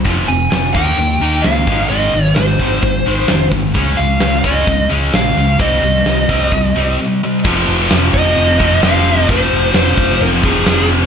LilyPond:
<<
  \new Staff \with { instrumentName = "Lead electric guitar" } { \time 4/4 \key c \phrygian \tempo 4 = 130 r8 aes''8 aes''8 g''4. f''4 | ees''4 c''2~ c''8 r8 | r8 f''4 ees''4 r8 f''4 | ees''2. r4 |
\key f \minor r4. ees''4. f''4 | c''4 c''4 bes'8 aes'4 r8 | }
  \new Staff \with { instrumentName = "Distorted electric guitar" } { \clef bass \time 4/4 \key c \phrygian <f, c f>8 <f, c>8 <f, c>8 <ees bes ees'>8 <ees bes>8 <ees bes ees'>8 <ees bes>8 <aes, ees aes>8 | <aes, ees aes>8 <aes, ees>8 <aes, ees>8 <aes, ees aes>8 <aes, ees>8 <aes, ees aes>8 <aes, ees>8 <aes, ees>8 | <des aes des'>8 <des aes>8 <des aes>8 <des aes des'>8 <des aes>8 <des aes des'>8 <des aes>8 <des aes>8 | <c g c'>8 <c g>8 <c g>8 <c g c'>8 <c g>8 <c g c'>8 <c g>8 <c g>8 |
\key f \minor <f, c f>2~ <f, c f>8 <f, c f>8 <f, c f>4 | <f, c f>2~ <f, c f>8 <f, c f>8 <f, c f>4 | }
  \new Staff \with { instrumentName = "Fingered electric bass" } { \clef bass \time 4/4 \key c \phrygian f,,8 f,,8 f,,8 ees,8 ees,8 ees,8 des,8 aes,,8 | aes,,8 aes,,8 aes,,8 aes,,8 aes,,8 aes,,8 f,,8 aes,,8 | des,8 des,8 des,8 des,8 des,8 des,8 bes,,8 des,8 | c,8 c,8 c,8 c,8 c,8 c,8 r4 |
\key f \minor f,,8 f,,8 f,,8 f,,8 f,,4 f,,4 | f,,8 f,,8 f,,8 f,,8 f,,4 f,,4 | }
  \new DrumStaff \with { instrumentName = "Drums" } \drummode { \time 4/4 <hho bd>8 hho8 <hho sn>8 <hho bd>8 hho8 hho8 <hho sn>8 <hho bd>8 | hho8 hho16 sn16 <hho sn>8 <hho bd sn>8 <hho bd>8 hho8 <hho sn>8 <hho bd>8 | <hho bd>8 hho8 <hho sn>8 <hho bd>8 <hho bd>8 hho8 <hho sn>8 hho8 | <hho bd>8 hho16 sn16 <hho sn>8 <hho bd sn>8 <hho bd>8 hho8 r4 |
<cymc bd>4 <cymc sn>8 bd8 cymc16 sn16 bd8 <cymc sn>16 sn8. | <cymc bd>4 <cymc sn>8 bd8 cymc16 sn16 bd8 <cymc sn>4 | }
>>